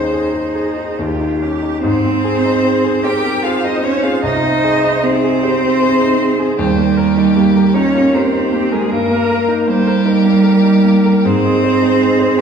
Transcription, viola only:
0, 0, Header, 1, 2, 480
1, 0, Start_track
1, 0, Key_signature, -4, "major"
1, 0, Tempo, 851064
1, 1035, Tempo, 801068
1, 1036, Time_signature, 3, 2, 24, 8
1, 2955, Tempo, 770218
1, 6315, Tempo, 821918
1, 6795, Tempo, 757576
1, 7528, End_track
2, 0, Start_track
2, 0, Title_t, "Viola"
2, 0, Program_c, 0, 41
2, 0, Note_on_c, 0, 68, 61
2, 565, Note_on_c, 0, 67, 60
2, 574, Note_off_c, 0, 68, 0
2, 921, Note_off_c, 0, 67, 0
2, 1523, Note_on_c, 0, 68, 74
2, 1745, Note_off_c, 0, 68, 0
2, 1763, Note_on_c, 0, 70, 67
2, 1999, Note_on_c, 0, 72, 79
2, 2008, Note_off_c, 0, 70, 0
2, 2469, Note_off_c, 0, 72, 0
2, 2473, Note_on_c, 0, 72, 79
2, 2951, Note_on_c, 0, 68, 78
2, 2961, Note_off_c, 0, 72, 0
2, 3189, Note_off_c, 0, 68, 0
2, 3193, Note_on_c, 0, 67, 65
2, 3431, Note_on_c, 0, 68, 68
2, 3441, Note_off_c, 0, 67, 0
2, 3674, Note_off_c, 0, 68, 0
2, 3677, Note_on_c, 0, 68, 71
2, 3912, Note_on_c, 0, 72, 79
2, 3921, Note_off_c, 0, 68, 0
2, 4153, Note_on_c, 0, 70, 65
2, 4163, Note_off_c, 0, 72, 0
2, 4399, Note_on_c, 0, 67, 71
2, 4408, Note_off_c, 0, 70, 0
2, 4646, Note_on_c, 0, 65, 68
2, 4655, Note_off_c, 0, 67, 0
2, 4887, Note_on_c, 0, 67, 72
2, 4896, Note_off_c, 0, 65, 0
2, 5359, Note_off_c, 0, 67, 0
2, 5363, Note_on_c, 0, 70, 86
2, 5833, Note_off_c, 0, 70, 0
2, 5848, Note_on_c, 0, 72, 87
2, 6081, Note_on_c, 0, 70, 71
2, 6090, Note_off_c, 0, 72, 0
2, 6796, Note_off_c, 0, 70, 0
2, 6800, Note_on_c, 0, 68, 89
2, 7528, Note_off_c, 0, 68, 0
2, 7528, End_track
0, 0, End_of_file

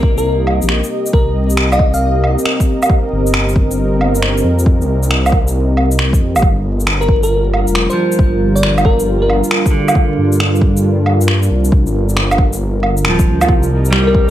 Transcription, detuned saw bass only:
0, 0, Header, 1, 2, 480
1, 0, Start_track
1, 0, Key_signature, -3, "minor"
1, 0, Tempo, 441176
1, 1231, Time_signature, 4, 2, 24, 8
1, 15560, End_track
2, 0, Start_track
2, 0, Title_t, "Detuned saw bass"
2, 0, Program_c, 0, 39
2, 0, Note_on_c, 0, 36, 97
2, 652, Note_off_c, 0, 36, 0
2, 684, Note_on_c, 0, 34, 93
2, 891, Note_off_c, 0, 34, 0
2, 1234, Note_on_c, 0, 36, 99
2, 2572, Note_off_c, 0, 36, 0
2, 3399, Note_on_c, 0, 31, 89
2, 4824, Note_off_c, 0, 31, 0
2, 4833, Note_on_c, 0, 41, 77
2, 5235, Note_on_c, 0, 36, 89
2, 5252, Note_off_c, 0, 41, 0
2, 6736, Note_off_c, 0, 36, 0
2, 6743, Note_on_c, 0, 41, 86
2, 6916, Note_on_c, 0, 31, 86
2, 6932, Note_off_c, 0, 41, 0
2, 6983, Note_off_c, 0, 31, 0
2, 6990, Note_on_c, 0, 31, 105
2, 8330, Note_off_c, 0, 31, 0
2, 8355, Note_on_c, 0, 29, 92
2, 8567, Note_off_c, 0, 29, 0
2, 8907, Note_on_c, 0, 31, 101
2, 10248, Note_off_c, 0, 31, 0
2, 11070, Note_on_c, 0, 43, 93
2, 12500, Note_off_c, 0, 43, 0
2, 12518, Note_on_c, 0, 36, 78
2, 12907, Note_on_c, 0, 31, 86
2, 12924, Note_off_c, 0, 36, 0
2, 14197, Note_on_c, 0, 26, 89
2, 14214, Note_off_c, 0, 31, 0
2, 14436, Note_on_c, 0, 38, 82
2, 14452, Note_off_c, 0, 26, 0
2, 14660, Note_off_c, 0, 38, 0
2, 14671, Note_on_c, 0, 36, 106
2, 15560, Note_off_c, 0, 36, 0
2, 15560, End_track
0, 0, End_of_file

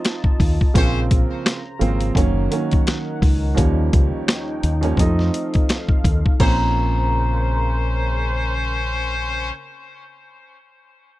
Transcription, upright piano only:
0, 0, Header, 1, 2, 480
1, 0, Start_track
1, 0, Key_signature, -5, "minor"
1, 0, Tempo, 705882
1, 511, Time_signature, 4, 2, 24, 8
1, 7613, End_track
2, 0, Start_track
2, 0, Title_t, "Upright piano"
2, 0, Program_c, 0, 0
2, 0, Note_on_c, 0, 53, 95
2, 0, Note_on_c, 0, 57, 88
2, 0, Note_on_c, 0, 60, 87
2, 0, Note_on_c, 0, 63, 113
2, 439, Note_off_c, 0, 53, 0
2, 442, Note_off_c, 0, 57, 0
2, 445, Note_off_c, 0, 60, 0
2, 448, Note_off_c, 0, 63, 0
2, 503, Note_on_c, 0, 49, 99
2, 510, Note_on_c, 0, 53, 89
2, 516, Note_on_c, 0, 58, 91
2, 521, Note_on_c, 0, 60, 104
2, 1068, Note_off_c, 0, 49, 0
2, 1071, Note_off_c, 0, 53, 0
2, 1074, Note_off_c, 0, 58, 0
2, 1077, Note_off_c, 0, 60, 0
2, 1218, Note_on_c, 0, 49, 93
2, 1224, Note_on_c, 0, 53, 88
2, 1230, Note_on_c, 0, 58, 91
2, 1237, Note_on_c, 0, 60, 106
2, 1463, Note_on_c, 0, 51, 95
2, 1465, Note_off_c, 0, 49, 0
2, 1466, Note_off_c, 0, 58, 0
2, 1468, Note_off_c, 0, 53, 0
2, 1471, Note_on_c, 0, 54, 91
2, 1474, Note_off_c, 0, 60, 0
2, 1476, Note_on_c, 0, 58, 91
2, 1483, Note_on_c, 0, 61, 110
2, 1691, Note_off_c, 0, 51, 0
2, 1694, Note_off_c, 0, 54, 0
2, 1697, Note_off_c, 0, 58, 0
2, 1700, Note_off_c, 0, 61, 0
2, 1705, Note_on_c, 0, 51, 91
2, 1711, Note_on_c, 0, 54, 89
2, 1716, Note_on_c, 0, 58, 79
2, 1723, Note_on_c, 0, 61, 102
2, 2377, Note_off_c, 0, 51, 0
2, 2381, Note_off_c, 0, 54, 0
2, 2383, Note_off_c, 0, 58, 0
2, 2386, Note_off_c, 0, 61, 0
2, 2411, Note_on_c, 0, 39, 91
2, 2417, Note_on_c, 0, 53, 87
2, 2422, Note_on_c, 0, 55, 86
2, 2426, Note_on_c, 0, 58, 90
2, 2430, Note_on_c, 0, 61, 104
2, 3201, Note_off_c, 0, 39, 0
2, 3203, Note_off_c, 0, 53, 0
2, 3206, Note_off_c, 0, 55, 0
2, 3208, Note_off_c, 0, 58, 0
2, 3210, Note_off_c, 0, 61, 0
2, 3272, Note_on_c, 0, 39, 94
2, 3278, Note_on_c, 0, 53, 86
2, 3283, Note_on_c, 0, 55, 84
2, 3287, Note_on_c, 0, 58, 80
2, 3291, Note_on_c, 0, 61, 109
2, 3370, Note_off_c, 0, 53, 0
2, 3380, Note_on_c, 0, 53, 95
2, 3387, Note_on_c, 0, 57, 90
2, 3393, Note_on_c, 0, 60, 88
2, 3400, Note_on_c, 0, 63, 108
2, 3403, Note_off_c, 0, 39, 0
2, 3408, Note_off_c, 0, 55, 0
2, 3410, Note_off_c, 0, 58, 0
2, 3412, Note_off_c, 0, 61, 0
2, 4278, Note_off_c, 0, 53, 0
2, 4282, Note_off_c, 0, 57, 0
2, 4285, Note_off_c, 0, 60, 0
2, 4288, Note_off_c, 0, 63, 0
2, 4350, Note_on_c, 0, 53, 85
2, 4352, Note_on_c, 0, 58, 83
2, 4354, Note_on_c, 0, 60, 82
2, 4356, Note_on_c, 0, 61, 100
2, 6461, Note_off_c, 0, 53, 0
2, 6464, Note_off_c, 0, 58, 0
2, 6466, Note_off_c, 0, 60, 0
2, 6467, Note_off_c, 0, 61, 0
2, 7613, End_track
0, 0, End_of_file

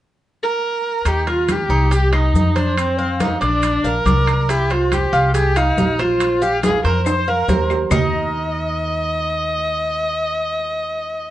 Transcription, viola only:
0, 0, Header, 1, 2, 480
1, 0, Start_track
1, 0, Key_signature, -3, "major"
1, 0, Tempo, 429185
1, 1177, Time_signature, 4, 2, 24, 8
1, 12642, End_track
2, 0, Start_track
2, 0, Title_t, "Viola"
2, 0, Program_c, 0, 41
2, 483, Note_on_c, 0, 70, 85
2, 1199, Note_on_c, 0, 67, 89
2, 1216, Note_off_c, 0, 70, 0
2, 1428, Note_off_c, 0, 67, 0
2, 1448, Note_on_c, 0, 65, 74
2, 1689, Note_on_c, 0, 67, 74
2, 1706, Note_off_c, 0, 65, 0
2, 2154, Note_off_c, 0, 67, 0
2, 2160, Note_on_c, 0, 67, 76
2, 2374, Note_off_c, 0, 67, 0
2, 2390, Note_on_c, 0, 63, 74
2, 2877, Note_on_c, 0, 62, 79
2, 2894, Note_off_c, 0, 63, 0
2, 3108, Note_off_c, 0, 62, 0
2, 3123, Note_on_c, 0, 60, 80
2, 3591, Note_on_c, 0, 63, 74
2, 3608, Note_off_c, 0, 60, 0
2, 3825, Note_off_c, 0, 63, 0
2, 3830, Note_on_c, 0, 62, 83
2, 4320, Note_on_c, 0, 70, 91
2, 4337, Note_off_c, 0, 62, 0
2, 5026, Note_on_c, 0, 67, 88
2, 5042, Note_off_c, 0, 70, 0
2, 5273, Note_on_c, 0, 65, 86
2, 5290, Note_off_c, 0, 67, 0
2, 5512, Note_on_c, 0, 67, 79
2, 5528, Note_off_c, 0, 65, 0
2, 5976, Note_off_c, 0, 67, 0
2, 5983, Note_on_c, 0, 67, 82
2, 6223, Note_on_c, 0, 63, 92
2, 6239, Note_off_c, 0, 67, 0
2, 6708, Note_on_c, 0, 65, 85
2, 6725, Note_off_c, 0, 63, 0
2, 7180, Note_on_c, 0, 67, 93
2, 7197, Note_off_c, 0, 65, 0
2, 7416, Note_off_c, 0, 67, 0
2, 7424, Note_on_c, 0, 68, 86
2, 7642, Note_off_c, 0, 68, 0
2, 7660, Note_on_c, 0, 70, 85
2, 7880, Note_off_c, 0, 70, 0
2, 7904, Note_on_c, 0, 72, 82
2, 8154, Note_on_c, 0, 70, 83
2, 8171, Note_off_c, 0, 72, 0
2, 8622, Note_off_c, 0, 70, 0
2, 8876, Note_on_c, 0, 75, 83
2, 12642, Note_off_c, 0, 75, 0
2, 12642, End_track
0, 0, End_of_file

